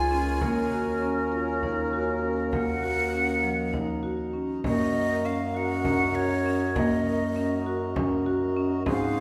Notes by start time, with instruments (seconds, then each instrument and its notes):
Already playing: bass clarinet C#2, harmonium C#3 A#3 F5, clarinet F4, flute G#5
0.11 marimba C#4
0.41 bass clarinet D#2, harmonium D#3 C#4 A#4, marimba A#3, clarinet A#4, frame drum
0.72 marimba F#4
1.02 marimba C#4, frame drum
1.32 marimba F4
1.63 marimba D#4, frame drum
1.93 marimba F#4
2.22 marimba C#4
2.52 marimba A#3, harmonium D#4, flute F#5, frame drum
2.83 marimba F#4, frame drum
3.14 marimba C#4
3.43 marimba F3
3.73 marimba D#4, frame drum
4.03 marimba F#4
4.33 marimba C#4, frame drum
4.64 bass clarinet F#2, harmonium F#3 D#4 A#4, marimba A#3, flute D#5, frame drum
4.94 marimba A#4
5.25 marimba C#4, flute F5
5.54 marimba F#4, flute F#5
5.85 marimba C#4, frame drum
6.15 marimba F#4, flute C#5
6.46 marimba C#4
6.76 marimba A#3, flute D#5, frame drum
7.06 marimba A#4
7.36 marimba C#4
7.66 marimba F#4
7.96 marimba C#4, frame drum
8.26 marimba F#4
8.57 marimba C#4
8.86 bass clarinet G#2, harmonium G#3 F#4 C5, marimba C4, flute F5, frame drum